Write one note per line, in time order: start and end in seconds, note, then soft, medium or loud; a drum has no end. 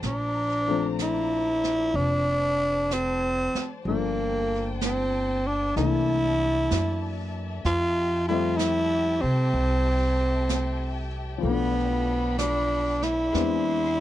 0.00 1.91 A#1 medium
0.00 5.72 C5 soft
0.00 3.82 D5 soft
0.00 1.93 A#5 medium
0.00 brush sweep soft
0.00 snare soft
0.06 0.96 D4 medium
0.68 3.86 F3 soft
0.68 3.86 A3 soft
0.68 3.87 C4 soft
0.68 3.87 D4 soft
0.99 1.97 E4 medium
0.99 brush sweep soft
0.99 snare soft
0.99 hi-hat pedal soft
1.64 snare soft
1.93 3.50 F1 medium
1.93 2.95 D4 medium
1.93 3.83 A5 medium
1.93 brush sweep soft
2.91 3.71 C4 medium
2.91 brush sweep soft
2.91 snare soft
2.91 hi-hat pedal soft
3.55 muted upright bass stroke soft
3.55 snare soft
3.84 5.71 G1 medium
3.84 5.76 F3 soft
3.84 4.78 A#3 medium
3.84 5.72 G5 medium
3.84 7.59 A5 medium
3.84 brush sweep soft
3.88 5.76 A#3 soft
3.88 5.76 D4 soft
3.88 5.77 A4 soft
4.81 5.49 C4 medium
4.81 brush sweep soft
4.81 snare soft
4.81 hi-hat pedal soft
5.47 5.76 D4 medium
5.73 6.66 C2 medium
5.73 7.64 E3 soft
5.73 7.61 D5 medium
5.73 11.37 E5 medium
5.73 brush sweep soft
5.73 snare soft
5.77 7.65 A3 soft
5.77 7.65 A#3 soft
5.77 7.65 D4 soft
5.77 7.30 E4 medium
6.71 7.61 F#2 medium
6.71 brush sweep soft
6.71 snare soft
6.71 hi-hat pedal soft
7.64 9.18 F2 medium
7.64 8.24 F4 medium
7.64 11.39 G4 medium
7.64 13.29 G5 medium
7.64 11.39 A5 medium
7.64 brush sweep soft
7.64 snare soft
8.28 11.43 G3 soft
8.28 11.41 A3 soft
8.28 11.44 C4 soft
8.28 8.58 F4 medium
8.28 11.44 E5 medium
8.57 9.23 E4 medium
8.57 brush sweep soft
8.57 snare soft
8.57 hi-hat pedal soft
9.21 9.51 C3 medium
9.21 11.11 C4 medium
9.54 11.39 C2 medium
9.54 brush sweep soft
10.49 brush sweep soft
10.49 snare soft
10.49 hi-hat pedal soft
11.38 13.30 F3 soft
11.38 13.30 A4 medium
11.38 14.00 D5 medium
11.38 13.30 B5 medium
11.42 13.29 B1 medium
11.42 13.33 A3 soft
11.42 12.34 B3 medium
11.42 brush sweep soft
11.47 13.32 B3 soft
11.47 13.33 D4 soft
12.38 13.05 D4 medium
12.38 brush sweep soft
12.38 snare soft
12.38 hi-hat pedal soft
13.02 14.00 E4 medium
13.02 snare soft
13.31 14.00 E2 medium
13.31 14.00 G#3 soft
13.31 14.00 B3 soft
13.31 14.00 C4 soft
13.31 14.00 D4 medium
13.31 14.00 G#4 medium
13.31 14.00 E5 soft
13.31 14.00 C6 medium
13.31 brush sweep soft
13.31 snare soft